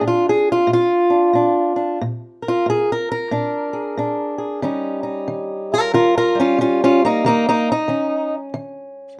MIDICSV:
0, 0, Header, 1, 2, 480
1, 0, Start_track
1, 0, Tempo, 654308
1, 1471, Time_signature, 4, 2, 24, 8
1, 6745, End_track
2, 0, Start_track
2, 0, Title_t, "Steel-string acoustic guitar"
2, 0, Program_c, 0, 25
2, 0, Note_on_c, 0, 62, 49
2, 8, Note_on_c, 0, 46, 70
2, 55, Note_on_c, 0, 65, 85
2, 200, Note_off_c, 0, 65, 0
2, 215, Note_on_c, 0, 68, 88
2, 360, Note_off_c, 0, 68, 0
2, 381, Note_on_c, 0, 65, 86
2, 463, Note_off_c, 0, 46, 0
2, 492, Note_on_c, 0, 46, 81
2, 524, Note_off_c, 0, 65, 0
2, 538, Note_on_c, 0, 65, 101
2, 799, Note_off_c, 0, 62, 0
2, 807, Note_on_c, 0, 62, 44
2, 946, Note_off_c, 0, 46, 0
2, 978, Note_on_c, 0, 46, 69
2, 982, Note_off_c, 0, 62, 0
2, 991, Note_on_c, 0, 62, 48
2, 1283, Note_off_c, 0, 62, 0
2, 1292, Note_on_c, 0, 62, 50
2, 1430, Note_off_c, 0, 46, 0
2, 1449, Note_off_c, 0, 62, 0
2, 1478, Note_on_c, 0, 46, 82
2, 1486, Note_off_c, 0, 65, 0
2, 1778, Note_on_c, 0, 70, 49
2, 1822, Note_on_c, 0, 65, 94
2, 1920, Note_off_c, 0, 46, 0
2, 1952, Note_on_c, 0, 46, 67
2, 1967, Note_off_c, 0, 65, 0
2, 1979, Note_on_c, 0, 68, 97
2, 2126, Note_off_c, 0, 68, 0
2, 2140, Note_off_c, 0, 70, 0
2, 2143, Note_on_c, 0, 70, 86
2, 2277, Note_off_c, 0, 70, 0
2, 2286, Note_on_c, 0, 70, 96
2, 2397, Note_off_c, 0, 46, 0
2, 2431, Note_on_c, 0, 46, 77
2, 2435, Note_on_c, 0, 62, 53
2, 2738, Note_on_c, 0, 68, 45
2, 2877, Note_off_c, 0, 46, 0
2, 2915, Note_off_c, 0, 62, 0
2, 2916, Note_on_c, 0, 46, 71
2, 2924, Note_on_c, 0, 62, 48
2, 3206, Note_off_c, 0, 68, 0
2, 3215, Note_on_c, 0, 68, 47
2, 3359, Note_off_c, 0, 46, 0
2, 3372, Note_off_c, 0, 68, 0
2, 3377, Note_off_c, 0, 62, 0
2, 3392, Note_on_c, 0, 51, 72
2, 3395, Note_on_c, 0, 55, 53
2, 3401, Note_on_c, 0, 61, 52
2, 3407, Note_on_c, 0, 63, 54
2, 3688, Note_off_c, 0, 63, 0
2, 3691, Note_on_c, 0, 63, 50
2, 3720, Note_off_c, 0, 70, 0
2, 3837, Note_off_c, 0, 51, 0
2, 3871, Note_on_c, 0, 51, 72
2, 4208, Note_on_c, 0, 70, 95
2, 4212, Note_off_c, 0, 63, 0
2, 4212, Note_on_c, 0, 65, 91
2, 4316, Note_off_c, 0, 51, 0
2, 4349, Note_off_c, 0, 70, 0
2, 4350, Note_off_c, 0, 65, 0
2, 4355, Note_on_c, 0, 51, 83
2, 4360, Note_on_c, 0, 65, 85
2, 4360, Note_on_c, 0, 70, 96
2, 4515, Note_off_c, 0, 65, 0
2, 4515, Note_off_c, 0, 70, 0
2, 4530, Note_on_c, 0, 65, 86
2, 4531, Note_on_c, 0, 70, 95
2, 4649, Note_off_c, 0, 55, 0
2, 4658, Note_on_c, 0, 55, 49
2, 4675, Note_off_c, 0, 61, 0
2, 4680, Note_off_c, 0, 70, 0
2, 4681, Note_off_c, 0, 65, 0
2, 4692, Note_on_c, 0, 61, 84
2, 4700, Note_on_c, 0, 65, 91
2, 4797, Note_off_c, 0, 51, 0
2, 4831, Note_on_c, 0, 51, 75
2, 4841, Note_off_c, 0, 61, 0
2, 4843, Note_off_c, 0, 65, 0
2, 4849, Note_on_c, 0, 61, 83
2, 4854, Note_on_c, 0, 65, 89
2, 5000, Note_off_c, 0, 61, 0
2, 5001, Note_off_c, 0, 65, 0
2, 5016, Note_on_c, 0, 61, 87
2, 5020, Note_on_c, 0, 65, 94
2, 5163, Note_off_c, 0, 61, 0
2, 5165, Note_off_c, 0, 65, 0
2, 5170, Note_on_c, 0, 58, 84
2, 5180, Note_on_c, 0, 63, 96
2, 5274, Note_off_c, 0, 51, 0
2, 5290, Note_off_c, 0, 55, 0
2, 5315, Note_on_c, 0, 51, 73
2, 5317, Note_off_c, 0, 58, 0
2, 5324, Note_off_c, 0, 63, 0
2, 5326, Note_on_c, 0, 58, 96
2, 5338, Note_on_c, 0, 63, 108
2, 5477, Note_off_c, 0, 58, 0
2, 5483, Note_off_c, 0, 63, 0
2, 5492, Note_on_c, 0, 63, 113
2, 5496, Note_on_c, 0, 58, 93
2, 5640, Note_off_c, 0, 63, 0
2, 5642, Note_off_c, 0, 58, 0
2, 5661, Note_on_c, 0, 63, 102
2, 5755, Note_off_c, 0, 51, 0
2, 5781, Note_on_c, 0, 51, 75
2, 5787, Note_on_c, 0, 61, 50
2, 6122, Note_off_c, 0, 63, 0
2, 6226, Note_off_c, 0, 51, 0
2, 6263, Note_on_c, 0, 51, 82
2, 6706, Note_off_c, 0, 51, 0
2, 6745, Note_off_c, 0, 61, 0
2, 6745, End_track
0, 0, End_of_file